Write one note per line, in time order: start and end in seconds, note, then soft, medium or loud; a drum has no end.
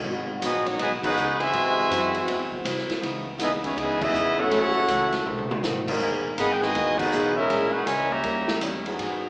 0.03 0.41 G#1 medium
0.03 0.29 G#2 medium
0.03 1.09 D#3 medium
0.03 0.30 F#3 medium
0.03 1.10 G#3 medium
0.03 0.30 B3 medium
0.03 1.09 B3 medium
0.03 0.31 D#4 medium
0.03 1.10 F#4 medium
0.03 kick soft
0.41 0.78 A#1 loud
0.41 0.67 G#2 medium
0.41 0.67 F#3 medium
0.41 0.65 F#3 medium
0.41 0.64 B3 medium
0.41 0.67 B3 medium
0.41 0.65 B3 medium
0.41 0.64 D#4 medium
0.41 0.68 D#4 medium
0.41 0.65 F#4 medium
0.41 0.65 G#4 medium
0.41 0.65 D#5 medium
0.41 kick soft
0.41 hi-hat pedal medium
0.41 ride medium
0.66 0.80 A#3 medium
0.66 0.79 C#4 medium
0.66 0.80 D#4 medium
0.66 0.79 F#4 medium
0.66 0.80 C#5 medium
0.66 ride medium
0.78 1.02 B1 medium
0.78 1.05 G#2 medium
0.78 0.89 F#3 medium
0.78 1.05 F#3 medium
0.78 0.89 B3 medium
0.78 0.91 B3 medium
0.78 1.06 B3 medium
0.78 0.89 D#4 medium
0.78 1.06 D#4 medium
0.78 0.91 F#4 medium
0.78 0.91 G#4 medium
0.78 0.91 D#5 loud
0.78 kick soft
0.78 ride medium
1.01 1.37 B3 medium
1.01 1.37 D#4 medium
1.01 1.38 D#4 loud
1.01 1.37 F#4 medium
1.01 1.38 G#4 loud
1.01 1.38 B4 loud
1.01 1.38 F#5 loud
1.01 muted upright bass stroke soft
1.01 kick loud
1.01 crash medium
1.16 1.53 C#2 loud
1.16 1.42 G#2 medium
1.16 1.42 F#3 medium
1.16 1.42 B3 medium
1.16 1.42 D#4 medium
1.16 hi-hat pedal medium
1.39 2.52 C3 loud
1.39 2.52 E3 loud
1.39 2.52 G#3 loud
1.39 2.52 F#4 loud
1.39 2.52 C5 loud
1.39 2.52 E5 loud
1.39 2.52 G#5 loud
1.39 ride medium
1.52 1.79 G#2 medium
1.52 1.89 G#2 medium
1.52 1.79 F#3 medium
1.52 1.79 C4 medium
1.52 1.80 E4 medium
1.52 kick soft
1.52 ride medium
1.90 2.27 F#2 loud
1.90 2.16 G#2 medium
1.90 2.16 F#3 medium
1.90 2.16 C4 medium
1.90 2.17 E4 medium
1.90 kick soft
1.90 hi-hat pedal medium
1.90 ride medium
2.14 2.63 E3 medium
2.14 2.63 G#3 medium
2.14 2.63 C4 medium
2.14 2.63 F#4 loud
2.14 ride medium
2.27 2.64 E2 medium
2.27 2.53 G#2 medium
2.27 2.54 F#3 medium
2.27 2.54 C4 medium
2.27 2.54 E4 medium
2.27 kick soft
2.27 ride medium
2.52 kick medium
2.64 2.88 C2 loud
2.64 2.90 G#2 medium
2.64 2.90 F#3 medium
2.64 2.90 C4 medium
2.64 2.91 E4 medium
2.64 kick soft
2.64 hi-hat pedal medium
2.64 ride medium
2.78 snare soft
2.89 muted upright bass stroke soft
2.89 snare medium
2.89 ride medium
3.01 3.39 C#2 medium
3.01 3.27 C#3 medium
3.01 3.27 E3 medium
3.01 3.28 B3 medium
3.01 3.28 D#4 medium
3.01 kick soft
3.01 ride medium
3.38 3.76 D#2 medium
3.38 3.64 C#3 medium
3.38 3.65 E3 medium
3.38 3.52 G#3 medium
3.38 3.65 B3 medium
3.38 3.52 B3 medium
3.38 3.65 D#4 medium
3.38 3.51 D#4 medium
3.38 3.52 E4 medium
3.38 3.52 G#4 medium
3.38 3.52 D#5 medium
3.38 kick soft
3.38 snare soft
3.38 hi-hat pedal medium
3.38 ride medium
3.64 3.76 E3 medium
3.64 3.76 G#3 medium
3.64 3.76 B3 medium
3.64 3.76 C#4 medium
3.64 3.76 E4 medium
3.64 3.76 G#4 medium
3.64 3.76 C#5 medium
3.64 kick medium
3.64 ride medium
3.76 4.13 C#2 medium
3.76 4.02 C#3 medium
3.76 4.02 E3 medium
3.76 4.00 G#3 medium
3.76 4.03 B3 medium
3.76 4.00 B3 medium
3.76 4.02 B3 medium
3.76 4.02 D#4 medium
3.76 4.03 D#4 medium
3.76 4.02 E4 medium
3.76 4.01 G#4 medium
3.76 4.02 D#5 loud
3.76 kick soft
3.76 ride medium
4.01 4.39 G#3 medium
4.01 4.39 B3 medium
4.01 4.39 E4 medium
4.01 4.39 G#4 loud
4.01 4.39 D#5 medium
4.01 4.39 E5 loud
4.01 kick loud
4.01 crash medium
4.12 4.50 E2 loud
4.12 4.39 C#3 medium
4.12 4.39 E3 medium
4.12 4.39 B3 medium
4.12 4.40 D#4 medium
4.12 hi-hat pedal medium
4.37 4.86 F#3 loud
4.37 5.51 A3 medium
4.37 4.86 C#4 loud
4.37 5.27 C#4 loud
4.37 4.86 E4 loud
4.37 5.27 E4 loud
4.37 5.51 F#4 loud
4.37 4.86 A4 loud
4.37 5.51 A4 loud
4.37 5.26 C#5 loud
4.37 5.51 F#5 loud
4.50 4.76 F#2 soft
4.50 4.88 F#2 medium
4.50 4.76 E3 medium
4.50 4.77 A3 medium
4.50 4.77 C#4 medium
4.50 kick soft
4.50 ride medium
4.88 5.25 C#2 medium
4.88 5.14 F#2 medium
4.88 5.14 E3 medium
4.88 5.14 A3 medium
4.88 5.15 C#4 medium
4.88 kick soft
4.88 hi-hat pedal medium
4.88 ride medium
5.12 snare soft
5.12 ride medium
5.26 5.62 B1 medium
5.26 5.51 B2 medium
5.26 5.52 D#3 medium
5.26 5.52 A3 medium
5.26 5.52 C4 medium
5.26 mid tom medium
5.38 mid tom medium
5.51 mid tom medium
5.63 5.99 A1 medium
5.63 5.89 B2 medium
5.63 5.89 D#3 medium
5.63 5.89 A3 medium
5.63 5.90 C4 medium
5.63 snare medium
5.63 hi-hat pedal medium
5.86 6.35 G#3 loud
5.86 6.35 D#4 medium
5.86 6.35 F#4 medium
5.86 6.35 A#4 loud
5.86 kick medium
5.86 crash loud
6.00 6.37 E1 medium
6.00 6.26 E3 medium
6.00 6.26 A#3 medium
6.00 6.27 D#4 medium
6.00 6.27 G#4 medium
6.00 kick soft
6.37 6.74 G#1 loud
6.37 6.53 D#3 medium
6.37 6.63 E3 medium
6.37 6.53 G#3 medium
6.37 6.64 A#3 medium
6.37 6.54 B3 medium
6.37 6.64 D#4 medium
6.37 6.53 G#4 loud
6.37 6.64 G#4 medium
6.37 6.53 D#5 loud
6.37 6.53 F#5 loud
6.37 6.39 A#5 medium
6.37 6.53 B5 loud
6.37 kick soft
6.37 hi-hat pedal medium
6.37 ride medium
6.52 6.62 G5 medium
6.61 7.00 B2 medium
6.61 6.99 D#3 medium
6.61 7.00 G#3 loud
6.61 6.99 F#4 medium
6.61 6.95 B4 medium
6.61 6.99 D#5 medium
6.61 6.99 G#5 loud
6.61 snare soft
6.75 7.11 D#2 medium
6.75 7.00 E3 medium
6.75 7.01 A#3 medium
6.75 7.01 D#4 medium
6.75 7.02 G#4 medium
6.75 kick soft
6.75 ride medium
6.97 7.36 B3 medium
6.97 7.36 D#4 loud
6.97 7.36 D#4 medium
6.97 7.36 F#4 medium
6.97 7.34 G#4 medium
6.97 7.35 B4 loud
6.97 7.35 F#5 loud
6.97 kick medium
6.97 crash medium
7.12 7.49 B1 loud
7.12 7.38 E3 medium
7.12 7.38 A#3 medium
7.12 7.38 D#4 medium
7.12 7.39 G#4 medium
7.12 hi-hat pedal medium
7.35 7.71 G#3 medium
7.35 7.84 G#3 loud
7.35 7.70 C#4 medium
7.35 7.71 C#4 medium
7.35 7.84 C#4 loud
7.35 7.71 E4 medium
7.35 7.84 E4 medium
7.35 7.71 G#4 medium
7.35 7.71 A#4 medium
7.35 7.84 A#4 loud
7.35 7.70 E5 loud
7.49 7.86 A#1 medium
7.49 7.75 A#2 soft
7.49 7.76 G#3 medium
7.49 7.76 C#4 medium
7.49 7.76 E4 medium
7.49 kick soft
7.49 ride medium
7.72 7.86 D#4 medium
7.72 7.86 F#4 medium
7.72 7.86 G#4 medium
7.72 7.86 B4 medium
7.72 7.86 F#5 medium
7.86 8.23 C#2 loud
7.86 8.12 A#2 medium
7.86 8.08 C#3 medium
7.86 8.10 E3 medium
7.86 8.11 G#3 medium
7.86 8.13 G#3 medium
7.86 8.12 C#4 medium
7.86 8.11 E4 medium
7.86 8.13 E4 medium
7.86 8.11 A#4 medium
7.86 8.10 C#5 medium
7.86 8.11 G#5 loud
7.86 kick soft
7.86 hi-hat pedal medium
7.86 ride medium
8.09 8.61 C#3 medium
8.09 8.61 G3 medium
8.09 8.61 A#3 medium
8.09 8.61 G4 medium
8.09 8.61 C#5 medium
8.09 8.61 E5 medium
8.09 8.61 A#5 loud
8.23 8.60 D#2 medium
8.23 8.49 D#3 medium
8.23 8.49 G3 medium
8.23 8.50 C#4 medium
8.23 8.51 E4 medium
8.23 kick soft
8.23 ride medium
8.48 snare medium
8.61 8.97 E2 loud
8.61 8.87 D#3 medium
8.61 8.87 G3 medium
8.61 8.88 C#4 medium
8.61 8.88 E4 medium
8.61 kick soft
8.61 hi-hat pedal medium
8.61 ride medium
8.85 9.29 F#3 loud
8.85 9.29 B3 medium
8.85 9.29 D#4 medium
8.85 9.29 G#4 loud
8.85 ride medium
8.99 9.24 G#2 medium
8.99 9.29 G#2 medium
8.99 9.25 F#3 medium
8.99 9.25 B3 medium
8.99 9.25 D#4 medium
8.99 kick soft
8.99 ride medium